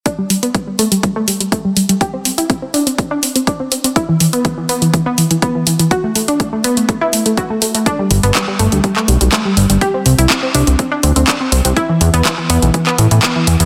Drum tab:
HH |x-oxx-oxx-oxx-ox|x-oxx-oxx-oxx-ox|x-oxx-oxx-oxx-ox|x-oxx-oxx-oxx-ox|
CP |----------------|----------------|----------------|----------------|
BD |o---o---o---o---|o---o---o---o---|o---o---o---o---|o---o---o---o---|

HH |x-oxx-oxx-oxx-ox|x-oxx-oxx-oxx-ox|x-oxx-oxx-oxx-ox|
CP |----x----x--x---|----x-------x---|----x----x--x---|
BD |o---o---o---o---|o---o---o---o---|o---o---o---o---|